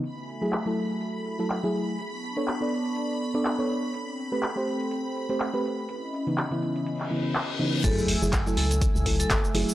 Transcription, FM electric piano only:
X:1
M:4/4
L:1/16
Q:"Swing 16ths" 1/4=123
K:F#m
V:1 name="FM electric piano"
z3 [F,A,EG] z [F,A,EA]6 [F,A,EA]2 [F,A,EG]3 | z3 [B,DAc] z [B,DAd]6 [B,DAd]2 [B,DAc]3 | z3 [A,=C=GB] z [A,CG=c]6 [A,CGc]2 [A,CGB]3 | z3 [C,E,B,^D] z [C,E,B,E]4- [C,E,B,E] [C,E,B,E]2 z2 [C,E,B,D]2 |
[F,A,EG]3 [F,A,EG] z [F,A,EA]4- [F,A,EA] [F,A,EA]2 z2 [F,A,EG]2 |]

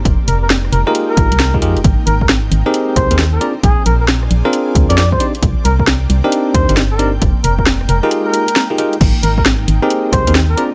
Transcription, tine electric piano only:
X:1
M:4/4
L:1/16
Q:"Swing 16ths" 1/4=134
K:Fdor
V:1 name="Tine electric piano"
z6 z [EFGAB]4 z2 [EFGAB] [EFGAB] z | z6 z [CEGAB]4 [CEGAB] z2 [CDFAd] z | z6 z [CDFAB]4 [CDFAB] z2 [CDEGd] z | z6 z [CDEGB]4 [CDEGB] z2 [CDEGd] z |
z6 z [EFGAB]4 z2 [EFGAB] [EFGAB] z | z6 z [CEGAB]4 [CEGAB] z2 [CDFAd] z |]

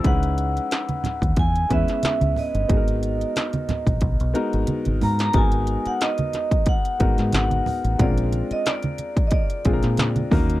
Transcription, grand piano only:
X:1
M:4/4
L:1/16
Q:"Swing 16ths" 1/4=90
K:G#m
V:1 name="Grand piano"
[G,CDEB]6 z4 [G,B,CEB]4- [G,B,CEB] z | [G,B,DFGA]6 z4 [G,B,DFA]4- [G,B,DFA] z | [G,B,DFA]6 z4 [G,B,DFA]4- [G,B,DFA] z | [G,^B,C=D^EA]6 z4 [G,B,DEGA]4 [A,C^DFA]2 |]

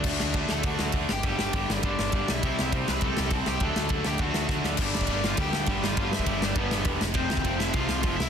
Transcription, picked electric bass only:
X:1
M:4/4
L:1/8
Q:1/4=203
K:Dmix
V:1 name="Picked electric bass" clef=bass
D,, D,, D,, D,, D,, D,, D,, G,,, | G,,, G,,, G,,, G,,, G,,, G,,, G,,, B,,, | C,, C,, C,, C,, C,, C,, C,, C,, | D,, D,, D,, D,, D,, D,, D,, D,, |
[K:Gmix] G,,, F,,, G,,,2 D,, D,, G,,, G,,, | G,,, G,, G,,,2 G,,, G,,, E,,, F,,, | F,,, D,, F,,,2 C,, C,, F,,, C,, |]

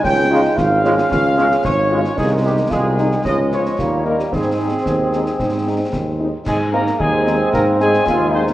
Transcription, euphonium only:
X:1
M:2/4
L:1/8
Q:1/4=112
K:Ab
V:1 name="Euphonium"
D E F D- | D4 | E2 F E | D z F E |
C4- | C3 z | A, B, A,2 | B, A,2 C |]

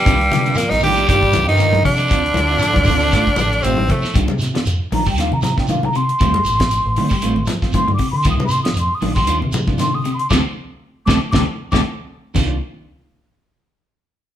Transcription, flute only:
X:1
M:4/4
L:1/16
Q:"Swing 16ths" 1/4=117
K:Cdor
V:1 name="Flute"
z16 | z16 | z6 b g f b b g f b c'2- | c'8- c'2 z2 (3c'2 d'2 c'2 |
(3e'2 c'2 e'2 (3c'2 e'2 c'2- c' z3 (3c'2 e'2 c'2 | d' z4 z d' z d' z2 d' z4 | z16 |]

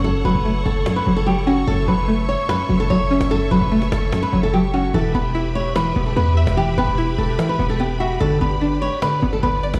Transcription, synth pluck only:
X:1
M:4/4
L:1/8
Q:1/4=147
K:F#phr
V:1 name="Synth pluck" clef=bass
[F,,F,C] F, A,2 F,, F, F, C | F,, F, A,2 F,, F, F, C | F,, F, A,2 F,, F, F, C | E, B, E2 E, B, B, e |
E, B, E2 E, B, B, e | D, B, D2 D, B, B, d |]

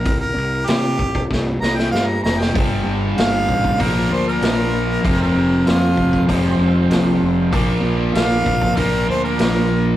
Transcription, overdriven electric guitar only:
X:1
M:4/4
L:1/8
Q:1/4=96
K:Bbmix
V:1 name="Overdriven electric guitar" clef=bass
z8 | [G,,D,G,]4 [B,,F,B,]4 | [F,,C,F,]4 [F,,C,F,]4 | [B,,F,B,]4 [B,,F,B,]4 |]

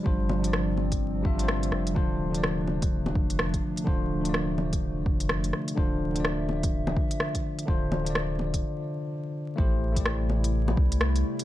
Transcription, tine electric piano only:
X:1
M:4/4
L:1/16
Q:"Swing 16ths" 1/4=126
K:Dm
V:1 name="Tine electric piano"
[G,DFc]3 [G,DFd]6- [G,DFd] [G,DFe] [G,DFc]4- [G,DFc] | [D,DFc]3 [D,DFd]12- [D,DFd] | [D,DFc]3 [D,DFd]12- [D,DFd] | [D,DFc]3 [D,DFd]12- [D,DFd] |
[D,DFc]3 [D,DFd]12- [D,DFd] | [A,EGc]3 [A,EGd]12- [A,EGd] |]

